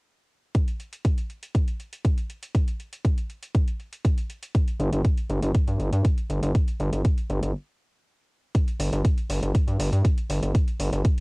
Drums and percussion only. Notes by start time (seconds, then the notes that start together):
0.55 kick, closed hi-hat
0.68 closed hi-hat
0.80 closed hi-hat
0.93 closed hi-hat
1.05 kick, closed hi-hat
1.18 closed hi-hat
1.30 closed hi-hat
1.43 closed hi-hat
1.55 kick, closed hi-hat
1.68 closed hi-hat
1.80 closed hi-hat
1.93 closed hi-hat
2.05 kick, closed hi-hat
2.18 closed hi-hat
2.30 closed hi-hat
2.43 closed hi-hat
2.55 kick, closed hi-hat
2.68 closed hi-hat
2.80 closed hi-hat
2.93 closed hi-hat
3.05 kick, closed hi-hat
3.18 closed hi-hat
3.30 closed hi-hat
3.43 closed hi-hat
3.55 kick, closed hi-hat
3.68 closed hi-hat
3.80 closed hi-hat
3.93 closed hi-hat
4.05 kick, closed hi-hat
4.18 closed hi-hat
4.30 closed hi-hat
4.43 closed hi-hat
4.55 kick, closed hi-hat
4.68 closed hi-hat
4.80 closed hi-hat
4.93 closed hi-hat
5.05 kick, closed hi-hat
5.18 closed hi-hat
5.30 closed hi-hat
5.43 closed hi-hat
5.55 kick, closed hi-hat
5.68 closed hi-hat
5.80 closed hi-hat
5.93 closed hi-hat
6.05 kick, closed hi-hat
6.18 closed hi-hat
6.30 closed hi-hat
6.43 closed hi-hat
6.55 kick, closed hi-hat
6.68 closed hi-hat
6.80 closed hi-hat
6.93 closed hi-hat
7.05 kick, closed hi-hat
7.18 closed hi-hat
7.30 closed hi-hat
7.43 closed hi-hat
8.55 kick, closed hi-hat
8.68 closed hi-hat
8.80 open hi-hat
8.93 closed hi-hat
9.05 kick, closed hi-hat
9.18 closed hi-hat
9.30 open hi-hat
9.43 closed hi-hat
9.55 kick, closed hi-hat
9.68 closed hi-hat
9.80 open hi-hat
9.93 closed hi-hat
10.05 kick, closed hi-hat
10.18 closed hi-hat
10.30 open hi-hat
10.43 closed hi-hat
10.55 kick, closed hi-hat
10.68 closed hi-hat
10.80 open hi-hat
10.93 closed hi-hat
11.05 kick, closed hi-hat